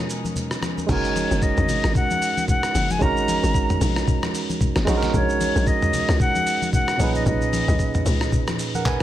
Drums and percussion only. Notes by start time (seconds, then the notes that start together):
0.10 shaker
0.24 high conga, shaker
0.36 low conga, shaker
0.51 cross-stick, shaker
0.62 cross-stick, high conga, shaker
0.78 high conga, shaker
0.89 kick, crash, low conga, shaker
1.04 shaker
1.16 open hi-hat, high conga, shaker
1.31 shaker
1.42 kick, shaker
1.57 mid tom, shaker
1.69 open hi-hat, high conga, low conga, shaker
1.84 cross-stick, shaker
1.95 kick, low conga, shaker
2.10 high conga, shaker
2.22 open hi-hat, shaker
2.37 high conga, shaker
2.48 kick, low conga, shaker
2.63 cross-stick, shaker
2.75 open hi-hat, high conga, shaker
2.90 high conga, shaker
3.01 kick, low conga, shaker
3.17 shaker
3.28 open hi-hat, high conga, shaker
3.43 shaker
3.54 kick, shaker
3.70 mid tom, shaker
3.81 open hi-hat, high conga, low conga, shaker
3.96 cross-stick, shaker
4.08 kick, low conga, shaker
4.23 cross-stick, high conga, shaker
4.34 open hi-hat, shaker
4.50 high conga, shaker
4.61 kick, low conga, shaker
4.76 cross-stick, snare, shaker
4.87 cross-stick, open hi-hat, high conga, shaker
5.03 snare, high conga, shaker
5.14 kick, low conga, shaker
5.29 shaker
5.40 open hi-hat, high conga, shaker
5.56 shaker
5.67 kick, shaker
5.82 mid tom, shaker
5.93 open hi-hat, high conga, low conga, shaker
6.09 cross-stick, shaker
6.20 kick, low conga, shaker
6.35 high conga, shaker
6.47 open hi-hat, shaker
6.62 high conga, shaker
6.73 kick, low conga, shaker
6.88 cross-stick, shaker
7.00 open hi-hat, high conga, shaker
7.15 high conga, shaker
7.26 kick, low conga, shaker
7.41 shaker
7.53 open hi-hat, high conga, shaker
7.68 mid tom, shaker
7.79 kick, shaker
7.94 mid tom, shaker
8.06 open hi-hat, high conga, low conga, shaker
8.21 cross-stick, shaker
8.32 kick, low conga, shaker
8.47 cross-stick, high conga, shaker
8.59 open hi-hat, shaker
8.74 high conga, shaker
8.85 kick, clap, low conga, shaker